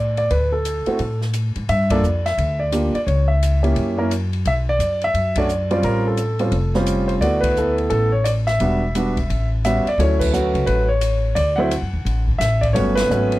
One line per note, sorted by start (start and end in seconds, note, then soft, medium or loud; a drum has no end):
0.00 0.27 A2 medium
0.00 0.16 D5 medium
0.17 0.30 D5 medium
0.17 ride soft
0.30 0.83 D2 medium
0.30 0.53 B4 medium
0.30 ride medium
0.52 1.17 A4 medium
0.65 hi-hat pedal soft
0.65 ride medium
0.86 0.98 A3 medium
0.86 0.98 C4 medium
0.86 0.99 E4 soft
0.86 0.99 F#4 medium
0.86 muted upright bass stroke soft
0.86 ride soft
0.99 1.52 A2 medium
0.99 ride soft
1.21 snare soft
1.33 hi-hat pedal medium
1.33 ride medium
1.56 1.68 G#2 medium
1.56 ride soft
1.69 2.01 G2 medium
1.69 1.91 E5 loud
1.69 ride medium
1.90 2.02 A#3 medium
1.90 2.02 D4 medium
1.90 2.02 F4 medium
1.90 2.03 A4 medium
1.90 2.23 D5 medium
1.90 kick medium
1.90 ride medium
2.03 2.35 F2 medium
2.03 hi-hat pedal medium
2.26 2.61 E5 medium
2.26 snare soft
2.26 ride soft
2.38 2.90 D2 medium
2.38 ride medium
2.60 2.94 D5 medium
2.72 2.92 A#3 medium
2.72 2.92 D4 soft
2.72 2.92 F4 soft
2.72 2.92 G4 medium
2.72 hi-hat pedal medium
2.72 ride medium
2.94 3.00 D5 medium
2.94 muted upright bass stroke soft
2.94 ride soft
3.07 3.73 C#2 medium
3.07 3.27 C#5 medium
3.07 ride soft
3.28 3.93 E5 medium
3.43 hi-hat pedal medium
3.43 ride medium
3.63 3.95 A#3 medium
3.63 3.95 C#4 medium
3.63 3.96 E4 medium
3.63 3.96 G4 medium
3.63 ride soft
3.76 4.42 F#2 medium
3.76 ride soft
3.98 4.09 A#3 medium
3.98 4.10 C#4 medium
3.98 4.10 E4 medium
3.98 4.10 A#4 medium
4.11 hi-hat pedal medium
4.11 ride medium
4.33 ride soft
4.45 4.77 B1 medium
4.45 4.52 E5 loud
4.45 ride medium
4.69 5.04 D5 loud
4.79 5.11 F#2 medium
4.79 hi-hat pedal medium
4.79 ride medium
5.01 5.35 E5 loud
5.01 ride soft
5.14 5.80 F#2 medium
5.14 ride soft
5.36 5.48 A3 medium
5.36 5.48 C#4 medium
5.36 5.48 D4 medium
5.36 5.49 F#4 medium
5.36 5.71 D5 medium
5.36 kick medium
5.36 ride medium
5.49 hi-hat pedal medium
5.71 6.16 G3 medium
5.71 6.16 C4 medium
5.71 6.16 C#4 medium
5.71 6.16 F4 medium
5.71 5.84 D5 medium
5.71 ride soft
5.83 6.49 A1 medium
5.83 6.04 A#4 medium
5.83 ride medium
6.07 6.71 A4 medium
6.17 hi-hat pedal soft
6.17 ride medium
6.39 6.51 G3 soft
6.39 6.51 C4 medium
6.39 6.52 C#4 soft
6.39 6.52 F4 medium
6.39 ride soft
6.52 7.18 F1 medium
6.52 ride soft
6.74 7.20 G3 medium
6.74 7.20 C4 medium
6.74 7.20 C#4 medium
6.74 7.20 F4 medium
6.74 snare soft
6.86 hi-hat pedal medium
6.86 ride medium
7.08 7.13 C5 medium
7.08 ride soft
7.21 7.87 D2 medium
7.21 7.55 A3 medium
7.21 7.55 B3 medium
7.21 7.56 E4 soft
7.21 7.56 F#4 medium
7.21 7.44 D5 medium
7.21 ride medium
7.41 7.74 B4 medium
7.41 kick medium
7.41 ride medium
7.57 8.09 A3 medium
7.57 8.09 B3 medium
7.57 8.09 E4 medium
7.57 7.88 A4 medium
7.57 hi-hat pedal medium
7.78 ride soft
7.90 8.57 A1 medium
7.90 8.11 A4 medium
7.90 ride medium
8.12 8.26 C#5 medium
8.24 8.29 D5 medium
8.24 hi-hat pedal medium
8.24 ride medium
8.47 9.47 E5 medium
8.47 snare soft
8.47 ride soft
8.60 9.26 E1 medium
8.60 8.80 G3 medium
8.60 8.80 B3 soft
8.60 8.80 D4 soft
8.60 8.81 F#4 medium
8.60 ride medium
8.95 9.14 G3 medium
8.95 9.15 B3 medium
8.95 9.15 D4 medium
8.95 9.15 F#4 medium
8.95 hi-hat pedal medium
8.95 ride medium
9.17 kick medium
9.17 ride soft
9.30 9.82 A1 medium
9.30 ride medium
9.65 9.84 G3 soft
9.65 9.84 B3 medium
9.65 9.84 C#4 soft
9.65 9.84 F#4 medium
9.65 9.88 E5 medium
9.65 hi-hat pedal medium
9.65 ride medium
9.86 10.00 D5 medium
9.86 muted upright bass stroke soft
9.86 ride soft
9.98 10.50 D2 medium
9.98 10.32 F#3 medium
9.98 10.32 A3 medium
9.98 10.32 C#4 medium
9.98 10.33 E4 medium
9.98 10.21 C#5 medium
9.98 ride medium
10.19 10.65 B4 medium
10.19 kick medium
10.19 crash medium
10.33 10.85 F#3 medium
10.33 10.85 A3 medium
10.33 10.85 C#4 medium
10.33 10.85 F#4 medium
10.33 hi-hat pedal medium
10.54 10.66 C#2 medium
10.54 ride soft
10.66 11.33 A1 medium
10.66 10.87 B4 medium
10.66 ride medium
10.89 11.38 C#5 medium
11.01 hi-hat pedal medium
11.01 ride medium
11.35 11.79 D2 medium
11.35 11.58 D5 medium
11.35 ride medium
11.56 11.70 F#3 medium
11.56 11.70 A3 medium
11.56 11.70 C4 medium
11.56 11.70 E4 medium
11.56 12.22 F#5 medium
11.71 hi-hat pedal soft
11.71 ride medium
11.82 11.93 F#2 medium
11.93 12.04 D#2 medium
12.05 12.37 A1 medium
12.05 ride medium
12.28 kick medium
12.38 12.72 A1 medium
12.38 12.63 E5 medium
12.38 snare soft
12.38 hi-hat pedal medium
12.38 ride medium
12.61 12.66 D5 medium
12.61 kick medium
12.61 ride soft
12.73 13.07 G1 medium
12.73 13.08 F#3 medium
12.73 13.08 A3 medium
12.73 13.08 B3 medium
12.73 13.08 C#4 medium
12.73 12.94 C#5 medium
12.73 ride medium
12.95 13.39 B4 loud
12.95 snare medium
12.95 ride medium
13.09 13.39 G#1 medium
13.09 13.39 F#3 medium
13.09 13.39 A3 medium
13.09 13.39 B3 medium
13.09 13.39 C#4 medium
13.09 hi-hat pedal soft
13.32 ride soft